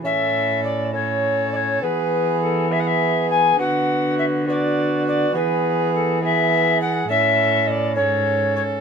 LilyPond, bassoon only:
\new Staff \with { instrumentName = "Bassoon" } { \time 6/8 \key a \major \tempo 4. = 68 cis'4. cis'4. | b4. b4. | b4. b4. | b4. b4 r8 |
cis'4. cis'4. | }